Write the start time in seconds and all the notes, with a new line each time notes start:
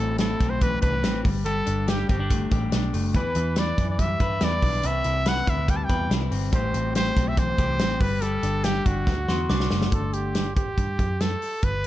Already playing: A2 G3 E4 A4
0.00 A1 C4
0.18 E4 A4, snare, closed hi-hat
0.40 B1 C4, kick, snare, closed hi-hat
0.50 C5
0.61 E3 B4, kick, closed hi-hat
0.82 C2 D4 B4, kick, closed hi-hat
0.93 E4
1.03 A1 C4, snare, closed hi-hat
1.24 G1 G3, kick, open hi-hat
1.45 G3 G4 A4, closed hi-hat
1.66 G1 D4, closed hi-hat
1.87 G4, snare, closed hi-hat
2.09 G1 C4 G4, kick, closed hi-hat
2.19 D4
2.30 A3, kick, closed hi-hat
2.51 A1 G4, kick, closed hi-hat
2.72 B1 D4, snare, closed hi-hat
2.93 F#1 A3, open hi-hat
3.14 E2 E3 B4, kick, closed hi-hat
3.35 E2 E4, closed hi-hat
3.56 B4 D5, snare, closed hi-hat
3.78 F#2 E4, kick, snare, closed hi-hat
3.90 D5
3.99 G3 E5, kick, closed hi-hat
4.20 G2 B4, kick, closed hi-hat
4.41 E2 E4 D5, snare, closed hi-hat
4.62 B1 D4, kick, open hi-hat
4.83 C2 C3 B4 E5, closed hi-hat
5.04 C2 E4, closed hi-hat
5.26 B4 F#5, snare, closed hi-hat
5.47 D2 E4 E5, kick, closed hi-hat
5.68 G3 G5, kick, closed hi-hat
5.76 A5
5.84 G5
5.89 E2 B4, kick, closed hi-hat
6.10 C2 D4, snare, closed hi-hat
6.21 E4
6.31 G1 C4, open hi-hat
6.52 A1 A2 G4 C5, kick, closed hi-hat
6.74 A1 C4, closed hi-hat
6.95 G4 C5, snare, closed hi-hat
7.17 B1 C4, kick, snare, closed hi-hat
7.28 E5
7.37 E3 C5, kick, closed hi-hat
7.58 C2 G4, kick, closed hi-hat
7.79 A1 C4, snare, closed hi-hat
8.01 G1 G3 B4, kick, open hi-hat
8.21 G3 G4 A4, closed hi-hat
8.43 G1 D4, closed hi-hat
8.64 G4, snare, closed hi-hat
8.86 G1 D4 F#4, kick, closed hi-hat
9.07 D2 D3, kick, snare
9.28 E2 F#4 C6, snare
9.49 C2 D4 D6, snare
9.60 snare
9.71 F#1 A3, snare
9.82 snare
9.92 G1 A4, kick, closed hi-hat
10.13 G4, closed hi-hat
10.35 snare, closed hi-hat
10.56 G4, kick, closed hi-hat
10.78 G2, kick, closed hi-hat
10.99 F#2, kick, closed hi-hat
11.21 A4, snare, closed hi-hat
11.42 open hi-hat
11.63 G1 B4, kick, closed hi-hat